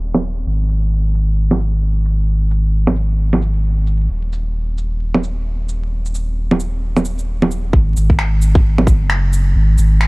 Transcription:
Already playing: D#1
0.14 low bongo
0.24 shaker
0.46 G#1
0.69 shaker
1.14 shaker
1.51 low bongo
1.60 shaker
2.05 shaker
2.51 shaker
2.87 low bongo
2.96 shaker
3.33 low bongo
3.42 shaker
3.87 shaker
4.10 D#1
4.33 shaker
4.78 shaker
5.15 low bongo
5.24 shaker
5.69 shaker
6.05 shaker
6.15 shaker
6.51 low bongo
6.60 shaker
6.97 low bongo, shaker
7.05 shaker
7.19 shaker
7.42 low bongo
7.51 shaker
7.73 G#1, kick
7.96 G#1, shaker
8.10 kick
8.19 finger snap
8.42 shaker
8.55 kick
8.78 low bongo
8.87 kick, shaker
9.01 F#1
9.10 finger snap
9.33 shaker
9.55 G#1
9.78 G#1, shaker
10.01 finger snap

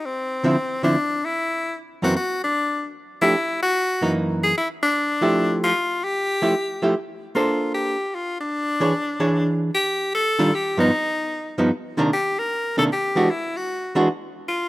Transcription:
0.06 C4
0.44 D3 F3 C4 E4
0.83 D3 F3 C4 D4 E4
1.25 E4
2.02 F#2 E3 A#3 C4 F#4
2.16 F#4
2.44 D4
3.21 F3 A3 D4 E4 G4
3.62 F#4
4.01 F#2 E3 A#3 D#4
4.43 G#4
4.57 E4
4.83 D4
5.21 F3 A3 E4 G4
5.64 F4
6.04 G4
6.42 F3 A3 E4 G4
6.82 F3 A3 E4 G4
7.35 A#3 D4 F4 A4 C5
7.74 G4
8.15 F4
8.41 D4
8.80 E3 D4 G#4 C#5
9.20 E3 D4 G#4 C#5
9.74 G4
10.15 A4
10.39 D#3 G3 D4 F4
10.55 G4
10.77 G2 F3 B3 D#4
11.58 G2 F3 B3 D#4
11.97 C3 D#3 A#3 D4
12.13 G4
12.39 A#4
12.77 C3 D#3 A#3 D4 A4
12.92 G4
13.16 E3 G#3 D4 F#4
13.31 E4
13.57 F#4
13.95 E3 G#3 D4 F#4
14.48 F4

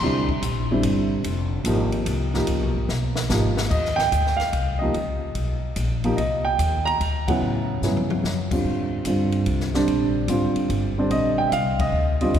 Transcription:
Already playing: C6
0.01 C2 D3 G3 C4 E4
0.29 kick
0.42 A#1, kick, hi-hat pedal, ride
0.71 D3 G3 C4 E4
0.83 G1, kick, ride
1.24 F1, kick, ride
1.64 G#1 F3 A#3 D#4 G4, kick, hi-hat pedal, ride
1.92 ride
2.06 C2, kick, ride
2.34 F3 A#3 D#4 G4, snare
2.47 C#2, kick, ride
2.61 B1
2.75 G#1
2.89 B1, snare
3.16 snare
3.30 G#1 F3 A#3 D#4 G4, snare, hi-hat pedal
3.57 snare
3.70 D#2 D#5, kick, crash
3.85 snare
3.96 G5, snare
4.12 D2, kick, hi-hat pedal, ride
4.26 snare
4.37 F5, snare, ride
4.53 C2, kick, ride
4.79 F3 A#3 D#4 D#5
4.83 G4
4.94 C#2, kick, ride
5.35 B1, kick, ride
5.76 A#1, kick, hi-hat pedal, ride
6.04 F3 A#3 D#4 G4, ride
6.17 C2 D#5, kick, ride
6.45 G5
6.59 D#2, kick, hi-hat pedal, ride
6.85 A#5, ride
7.00 D2, kick, ride
7.28 C#3 F#3 B3 E4 F#5, kick, ride
7.41 A2
7.82 G2 C#3 F#3 B3 E4, snare, hi-hat pedal
7.97 mid tom
8.10 mid tom
8.24 F#2, snare
8.51 D3 G3 C4 F4, kick, crash
8.64 G#2, kick
9.05 G2 D3 G3 C4 F4, kick, hi-hat pedal, ride
9.32 ride
9.46 C2, kick, ride
9.60 snare
9.74 D3 G3 C4 D4, snare
9.87 A#1, kick, ride
10.28 G#1 D3 G3 C4 F4, kick, hi-hat pedal, ride
10.56 muted upright bass stroke, ride
10.70 G1, kick, ride
10.98 D3 G3 C4 D4
11.10 A#1 D#5, kick, ride
11.38 G5
11.48 E5
11.52 C2 F5, kick, hi-hat pedal, ride
11.79 D#5, kick, ride
11.92 D2
12.21 D3 G3 C4 F4 D#5, ride
12.34 D#2, kick, ride

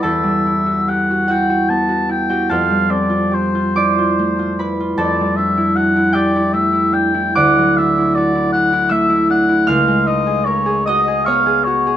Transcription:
Already playing: G3 B3 F#4 B4 B5
0.02 E2 A4 E5 A5
0.23 G3
0.46 E4
0.66 F#4
0.88 G4 F#5
1.10 F#4
1.28 E4 F#4 F#5 G5
1.50 F#4
1.69 B3 A5
1.88 F#4
2.09 E4 G5
2.29 F#4 G4 G5
2.49 F2 A4 F5 A5
2.70 G3
2.89 C4 D5
3.09 F4
3.31 G4 C5
3.55 F4
3.76 E4 D5 D6
3.98 F4
4.19 A3
4.39 F4
4.59 E4 B4 B5
4.80 F4
4.97 F2 A4 D5 A5
5.21 G3
5.36 D4 E5
5.57 E4
5.76 F#4 F#5
5.96 E4
6.13 D4 G4 D5 G5
6.36 E4
6.53 A3 E5
6.73 E4
6.93 D4 G5
7.14 E4
7.35 D2 D5 F#5 D6
7.58 F#3
7.77 D4 E5
7.98 E4
8.15 F#4 D5
8.35 E4
8.53 D4 F#5
8.73 E4
8.89 A3 E5 E6
9.09 E4
9.30 D4 F#5
9.49 E4
9.67 C#2 F5 F6
9.87 G#3
10.07 D#4 D#5
10.27 G#4
10.45 A#4 C#5
10.66 G#4
10.86 F#4 D#5 D#6
11.08 G#4
11.25 B3 C#5 F5 C#6
11.46 G#4
11.64 F#4 C#5
11.87 G#4

